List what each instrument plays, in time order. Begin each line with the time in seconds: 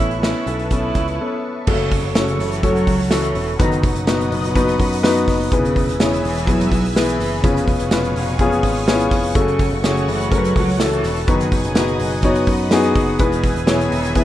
Already playing: picked electric bass A1, grand piano A2 E3 B3 C#4 A4, cello E4, analog synth pad B4 E5 A5 C#6
0.00 closed hi-hat
0.11 closed hi-hat
0.22 grand piano B3 C#4 B4, cello E4, snare
0.47 picked electric bass B1, grand piano B3 C#4 A4, closed hi-hat
0.59 closed hi-hat
0.71 grand piano B3 C#4 A4, cello E4, kick, closed hi-hat
0.95 picked electric bass C#2, kick, closed hi-hat
1.08 closed hi-hat
1.21 grand piano B3 C#4 A4
1.67 picked electric bass F#1, grand piano C#3 A3 C#4 F#4 A4, cello C#3, analog synth pad A4 C#5 F#5 C#6, kick, crash
1.91 kick, hi-hat pedal, open hi-hat
2.03 picked electric bass F#1, open hi-hat
2.15 cello C#3, grand piano A3 C#4 F#4 A4, snare, hi-hat pedal, open hi-hat
2.28 hi-hat pedal, open hi-hat
2.39 picked electric bass F#1, cello E3, hi-hat pedal, open hi-hat
2.51 hi-hat pedal, open hi-hat
2.62 cello F#3, grand piano A3 C#4 F#4 A4, kick, hi-hat pedal, open hi-hat
2.75 hi-hat pedal, open hi-hat
2.87 picked electric bass C#2, kick, hi-hat pedal, open hi-hat
2.99 hi-hat pedal, open hi-hat
3.11 cello E3, grand piano A3 C#4 F#4 A4, snare, hi-hat pedal, open hi-hat
3.23 hi-hat pedal
3.35 picked electric bass E1, hi-hat pedal, open hi-hat
3.48 open hi-hat
3.59 picked electric bass F#1, cello D#3, grand piano F#3 B3 D#4 F#4 B4, analog synth pad B4 D#5 F#5 D#6, kick, hi-hat pedal, open hi-hat
3.71 hi-hat pedal, open hi-hat
3.82 cello B2, kick, hi-hat pedal, open hi-hat
3.95 picked electric bass F#1, hi-hat pedal, open hi-hat
4.07 grand piano B3 D#4 F#4 B4, snare, hi-hat pedal, open hi-hat
4.20 hi-hat pedal, open hi-hat
4.31 picked electric bass F#1, hi-hat pedal, open hi-hat
4.44 hi-hat pedal, open hi-hat
4.55 grand piano B3 D#4 F#4 B4, kick, hi-hat pedal, open hi-hat
4.67 hi-hat pedal, open hi-hat
4.80 picked electric bass F#2, kick, hi-hat pedal, open hi-hat
4.92 hi-hat pedal, open hi-hat
5.03 grand piano B3 D#4 F#4 B4, snare, hi-hat pedal, open hi-hat
5.16 hi-hat pedal, open hi-hat
5.28 picked electric bass F#1, kick, snare, hi-hat pedal, open hi-hat
5.40 hi-hat pedal, open hi-hat
5.51 picked electric bass E1, grand piano B2 B3 E4 G#4 B4, cello C#3, analog synth pad B4 E5 G#5 E6, kick, hi-hat pedal, open hi-hat
5.65 hi-hat pedal, open hi-hat
5.76 kick, hi-hat pedal, open hi-hat
5.87 picked electric bass E1, hi-hat pedal, open hi-hat
5.99 cello C#3, grand piano B3 E4 G#4 C#5, snare, hi-hat pedal, open hi-hat
6.13 hi-hat pedal, open hi-hat
6.23 picked electric bass E1, cello E3, hi-hat pedal, open hi-hat
6.36 hi-hat pedal, open hi-hat
6.46 cello F#3, grand piano B3 E4 G#4 B4, kick, hi-hat pedal, open hi-hat
6.60 hi-hat pedal, open hi-hat
6.70 picked electric bass B1, cello F#3, kick, hi-hat pedal, open hi-hat
6.85 hi-hat pedal, open hi-hat
6.95 cello E3, grand piano B3 E4 G#4 B4, snare, hi-hat pedal, open hi-hat
7.08 hi-hat pedal
7.20 picked electric bass F#1, snare, hi-hat pedal, open hi-hat
7.32 open hi-hat
7.41 picked electric bass F1, cello C#3, grand piano F3 B3 C#4 F4 G#4, analog synth pad F5 G#5 C#6, kick, hi-hat pedal, open hi-hat
7.56 hi-hat pedal, open hi-hat
7.65 cello B2, kick, hi-hat pedal, open hi-hat
7.79 picked electric bass F1, hi-hat pedal, open hi-hat
7.91 grand piano B3 C#4 F4 B4, snare, hi-hat pedal, open hi-hat
8.04 hi-hat pedal
8.16 picked electric bass F1, hi-hat pedal, open hi-hat
8.28 open hi-hat
8.39 grand piano B3 C#4 F4 G#4, kick, hi-hat pedal, open hi-hat
8.51 hi-hat pedal, open hi-hat
8.63 picked electric bass G#1, kick, hi-hat pedal, open hi-hat
8.75 hi-hat pedal, open hi-hat
8.88 grand piano B3 C#4 E4 G#4, snare, hi-hat pedal, open hi-hat
8.94 grand piano F4
8.99 hi-hat pedal, open hi-hat
9.11 picked electric bass F1, kick, snare, hi-hat pedal, open hi-hat
9.23 hi-hat pedal, open hi-hat
9.35 picked electric bass F#1, cello C#3, grand piano C#3 A3 C#4 F#4 A4, analog synth pad A3 C#5 F#5, violin section F#4 F#5, kick, hi-hat pedal, open hi-hat
9.48 hi-hat pedal
9.59 kick, hi-hat pedal, open hi-hat
9.71 picked electric bass F#1, open hi-hat
9.84 cello C#3, grand piano A3 C#4 F#4 G#4, snare, hi-hat pedal, open hi-hat
9.96 hi-hat pedal, open hi-hat
10.08 picked electric bass F#1, cello E3, hi-hat pedal, open hi-hat
10.20 hi-hat pedal, open hi-hat
10.32 cello F#3, grand piano A3 C#4 F#4 A#4, kick, hi-hat pedal, open hi-hat
10.38 grand piano B4
10.44 hi-hat pedal, open hi-hat
10.56 picked electric bass C#2, cello F#3, kick, hi-hat pedal, open hi-hat
10.69 hi-hat pedal, open hi-hat
10.79 cello E3, grand piano A3 C#4 F#4 A4, violin section A4 A5, snare, hi-hat pedal, open hi-hat
10.92 hi-hat pedal, open hi-hat
11.04 picked electric bass E1, snare, hi-hat pedal, open hi-hat
11.16 hi-hat pedal, open hi-hat
11.27 picked electric bass F#1, cello D#3, grand piano F#3 B3 D#4 F#4 B4, violin section G#4 G#5, analog synth pad B4 D#5 D#6, kick, hi-hat pedal, open hi-hat
11.40 hi-hat pedal, open hi-hat
11.52 cello B2, kick, hi-hat pedal, open hi-hat
11.64 picked electric bass F#1, hi-hat pedal, open hi-hat
11.75 grand piano B3 D#4 F#4 B4, snare, hi-hat pedal, open hi-hat
11.87 hi-hat pedal
11.99 picked electric bass F#1, hi-hat pedal, open hi-hat
12.11 open hi-hat
12.22 grand piano B3 D#4 F#4 C#5, kick, hi-hat pedal, open hi-hat
12.35 hi-hat pedal
12.46 picked electric bass F#2, violin section F#4 F#5, kick, hi-hat pedal, open hi-hat
12.59 open hi-hat
12.71 grand piano B3 D#4 F#4 G#4, snare, hi-hat pedal, open hi-hat
12.83 hi-hat pedal
12.95 picked electric bass F#1, kick, hi-hat pedal, open hi-hat
13.08 open hi-hat
13.18 picked electric bass E1, grand piano B2 B3 E4 G#4 B4, cello B2, violin section G#4 G#5, analog synth pad B4 E5 G#5 E6, kick, hi-hat pedal, open hi-hat
13.32 hi-hat pedal, open hi-hat
13.43 kick, hi-hat pedal, open hi-hat
13.55 picked electric bass E1, hi-hat pedal, open hi-hat
13.66 cello B2, grand piano B3 E4 G#4 C#5, snare, hi-hat pedal, open hi-hat
13.80 hi-hat pedal, open hi-hat
13.89 picked electric bass E1, cello D#3, hi-hat pedal, open hi-hat
14.04 hi-hat pedal, open hi-hat
14.14 cello E3, grand piano B3 E4 G#4 B4, kick, hi-hat pedal, open hi-hat